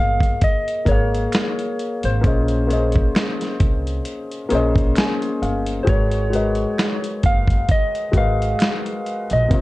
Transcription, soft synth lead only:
0.00 F5
0.44 D#5
0.89 C#5
2.05 C5
5.83 C5
5.89 C#5
7.26 F5
7.71 D#5
8.17 F5
9.33 D#5

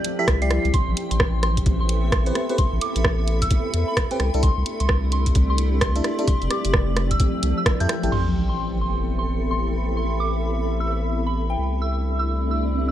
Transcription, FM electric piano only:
0.19 E4 G4 A4
0.42 E4 G4 D5
2.27 C4 G4 B4
2.50 C4 G4 B4
4.11 C4 G4 B4
4.34 D4 E4 A4
5.96 D4 E4 A4
6.19 D4 E4 A4
7.80 E4 G4 A4
8.03 E4 G4 A4

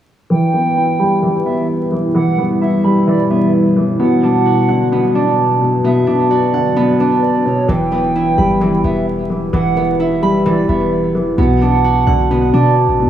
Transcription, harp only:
0.31 E3
0.53 B3
0.77 E4
0.99 B5
1.23 E3
1.46 B3
2.15 E3
2.38 B3
2.61 E4
2.84 B5
3.07 E3
3.30 B3
3.99 B3
4.23 D4
4.46 F#4
4.68 F#5
4.92 B3
5.15 D4
5.85 B3
6.07 D4
6.31 F#4
6.54 F#5
6.76 B3
7.00 D4
7.69 E3
7.92 B3
8.15 E4
8.38 B5
8.61 E3
8.84 B3
9.54 E3
9.77 B3
10.00 E4
10.23 B5
10.46 E3
10.69 B3
11.38 B3
11.62 D4
11.84 F#4
12.07 F#5
12.31 B3
12.54 D4

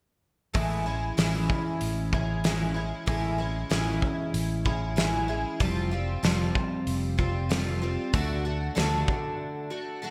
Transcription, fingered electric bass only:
0.55 A1
1.18 A1
1.81 A1
3.07 A1
3.71 A1
4.34 A1
5.61 F1
6.23 F1
6.87 F1
8.14 D2
8.77 D2

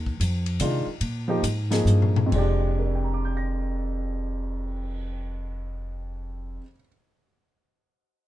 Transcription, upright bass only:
Already playing: D#2
0.20 F2
0.60 C3
0.87 muted upright bass stroke
1.01 A#2
1.43 G#2
1.85 G2
2.32 F1

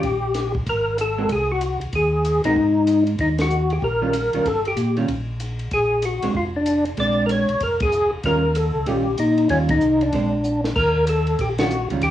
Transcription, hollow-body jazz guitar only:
1.18 G#3 C4 F#4 A#4
2.45 G#3 C4 F#4 A#4
4.02 D#3 G3 C#4 F4
4.34 D#3 G3 C#4 F4
4.97 D#3 G3 C#4 F4
6.23 G#3 C4 D4
6.98 G#3 C4 D4
8.25 D#3 G3 C#4 F4
8.88 D#3 G3 C#4 F4
9.51 D#3 G3 C#4 F4
10.14 G#3 C4 D4
11.59 D#3 G3 C#4 F4
11.91 D#3 G3 C#4 F4

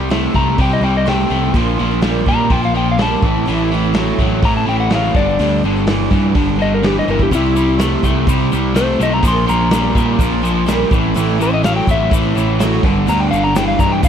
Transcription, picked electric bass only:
Already playing: C2
0.35 C2
0.58 C2
0.81 C2
1.30 C2
1.54 A#1
1.80 A#1
2.27 A#2
2.50 A#1
3.23 A1
3.48 A1
4.19 A1
4.43 A1
4.67 A1
5.15 G1
5.39 D2
5.64 G1
6.11 G2
6.35 G1
7.08 G1
7.32 C2
8.04 C2
8.27 C2
8.53 C2
9.00 B1
9.23 A#1
9.49 A#1
9.95 A#2
10.19 A#1
10.92 A1
11.16 A1
11.87 A1
12.12 A1
12.36 A1
12.84 G1
13.08 D2
13.32 G1
13.79 G2
14.04 G1

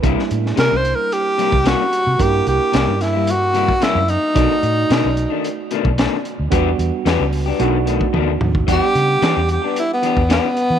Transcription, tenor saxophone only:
0.59 A#4
0.77 C5
0.95 A#4
1.13 G4
1.67 F#4
2.21 G4
2.48 G4
3.02 E4
3.31 F#4
3.83 E4
4.10 D#4
8.72 G4
9.51 G4
9.79 E4
9.93 B3
10.33 B3

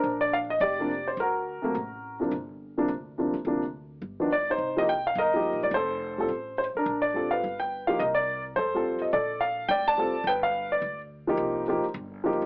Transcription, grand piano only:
Already playing: D4 A#4
0.21 D5
0.33 F5
0.50 D#5
0.61 G4 D5
0.80 C3 F3 A#3 D4
1.08 C5
1.20 F#4 A#4
1.62 C3 F#3 A3 A#3
2.20 C3 F3 A#3 D4
2.78 C3 F3 A#3 D4
3.18 C3 F3 A#3 D4
3.47 C3 F3 A#3 D4
4.20 D#3 F3 B3 D4
4.32 D5
4.50 D#4 C5
4.77 F3 A#3 D#4 G4 D#5
4.89 G5
5.07 F5
5.18 A#4 D#5
5.34 F3 A#3 D#4 G4
5.63 D5
5.74 A4 C5
6.18 G3 C4 F4 A4
6.58 C5
6.77 D4 A#4
7.02 D5
7.14 G3 C4 F4 A4
7.31 B4 F5
7.60 G5
7.87 F3 A#3 D#4 G4 F5
7.99 A#4 D#5
8.15 D5
8.56 A4 C5
8.74 G3 C4 F4 A4
9.02 D#5
9.13 A4 D5
9.41 F5
9.69 D5 G5
9.88 D5 A5
9.97 G3 C4 F4 A4
10.27 B4 G5
10.43 F5
10.72 D5
11.27 F3 A#3 D#4 G4
11.68 F3 A#3 D#4 G4
12.24 F3 A#3 D#4 G4

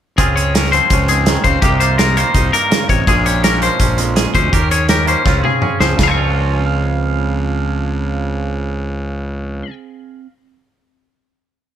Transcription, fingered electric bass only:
0.18 C#2
0.91 C#2
1.45 C#2
1.63 C2
2.34 C2
2.89 A1
3.08 A#1
3.80 A#1
4.35 D2
4.53 D#2
5.26 C#2
5.80 C#2
5.99 C#2

